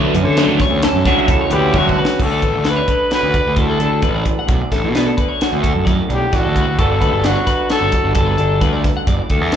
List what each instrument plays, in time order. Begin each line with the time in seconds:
Already playing: clean electric guitar D2 A3 F#4, overdriven electric guitar D3 F#3 A3 D4
0.04 clean electric guitar B4
0.14 picked electric bass F#2, clean electric guitar C#4, muted overdriven electric guitar stroke, closed hi-hat
0.24 picked electric bass D3, clean electric guitar A4
0.37 overdriven electric guitar D3 F#3 A3 D4, clean electric guitar A3, snare, closed hi-hat
0.47 picked electric bass D2
0.60 clean electric guitar C#5, muted overdriven electric guitar stroke, kick, snare, closed hi-hat
0.70 picked electric bass D2
0.82 clean electric guitar C#4 A4, muted overdriven electric guitar stroke, snare, closed hi-hat
0.94 picked electric bass F#2
1.05 picked electric bass C#2, overdriven electric guitar D3 F#3 A3 D4, clean electric guitar F#4 C#5, kick, snare, closed hi-hat
1.18 clean electric guitar E5
1.28 clean electric guitar A2 A4, muted overdriven electric guitar stroke, kick, closed hi-hat
1.41 clean electric guitar C#5
1.50 picked electric bass D2, trumpet G4, clean electric guitar B4, muted overdriven electric guitar stroke, closed hi-hat
1.55 clean electric guitar C#4
1.74 clean electric guitar D2 A3 C#5, overdriven electric guitar D3 F#3 A3 D4, trumpet F#4, kick, high tom
1.87 clean electric guitar B4, kick
1.98 clean electric guitar C#4 B4, muted overdriven electric guitar stroke
2.05 snare
2.20 picked electric bass D2, clean electric guitar D2 A4, trumpet A4, kick, crash
2.32 clean electric guitar D5
2.42 picked electric bass A1, clean electric guitar B4, kick, closed hi-hat
2.54 picked electric bass D2, clean electric guitar A4
2.64 clean electric guitar D4 B4, snare, closed hi-hat
2.70 trumpet B4
2.76 clean electric guitar C#5
2.88 clean electric guitar D3 B4, kick, closed hi-hat
3.11 clean electric guitar F#4 C#5, trumpet B4, snare, closed hi-hat
3.23 picked electric bass D2
3.34 clean electric guitar D5, kick, closed hi-hat
3.47 picked electric bass D2
3.56 clean electric guitar A2 A4, kick, closed hi-hat
3.61 trumpet A4
3.70 clean electric guitar B4
3.80 picked electric bass D2, clean electric guitar D4 A4, closed hi-hat
4.02 picked electric bass A1, clean electric guitar D2 B4, kick, closed hi-hat
4.15 clean electric guitar D5
4.25 clean electric guitar B4, kick, closed hi-hat
4.39 clean electric guitar F#5
4.47 picked electric bass B1, clean electric guitar D2 D5, kick, closed hi-hat
4.71 picked electric bass A1, clean electric guitar A4, kick, snare, closed hi-hat
4.84 picked electric bass B2
4.95 clean electric guitar D4 B4, snare, closed hi-hat
5.07 clean electric guitar A4
5.17 clean electric guitar D3 B4, kick, closed hi-hat
5.29 clean electric guitar C#5
5.41 clean electric guitar F#4, snare, closed hi-hat
5.52 picked electric bass D2, clean electric guitar B4
5.63 clean electric guitar A4, kick, closed hi-hat
5.75 picked electric bass F#2
5.85 picked electric bass F#2, clean electric guitar A2 D5, kick, closed hi-hat
6.09 picked electric bass B1, clean electric guitar D4, closed hi-hat
6.13 trumpet G4
6.32 picked electric bass A1, clean electric guitar D2 D5, trumpet F#4, kick, snare, closed hi-hat
6.44 picked electric bass D2, clean electric guitar A4
6.56 clean electric guitar B4, kick, closed hi-hat
6.67 picked electric bass D2
6.78 picked electric bass G1, clean electric guitar G2 D3 B3 D4 F#4 A4, trumpet A4, kick, closed hi-hat
6.91 clean electric guitar D5
7.01 picked electric bass D2, clean electric guitar B4, kick, closed hi-hat
7.12 picked electric bass G1, clean electric guitar A4
7.24 clean electric guitar D4 B4, trumpet F#4, snare, closed hi-hat
7.35 clean electric guitar C#5
7.47 clean electric guitar D3 B4, kick, snare, closed hi-hat
7.70 clean electric guitar F#4 C#5, trumpet A4, snare, closed hi-hat
7.81 picked electric bass G1
7.92 clean electric guitar D5, kick, closed hi-hat
8.03 picked electric bass G1
8.15 clean electric guitar D3 A4, trumpet A4, kick, closed hi-hat
8.26 clean electric guitar B4
8.37 picked electric bass G1, clean electric guitar D4 A4, closed hi-hat
8.61 picked electric bass D2, clean electric guitar G2 B4, kick, closed hi-hat
8.73 clean electric guitar D5
8.84 clean electric guitar B4, kick, snare, closed hi-hat
8.97 clean electric guitar F#5
9.07 picked electric bass F#1, clean electric guitar G2 D5, kick, closed hi-hat
9.30 picked electric bass D2, clean electric guitar A4, kick, closed hi-hat
9.41 picked electric bass E2
9.52 snare, closed hi-hat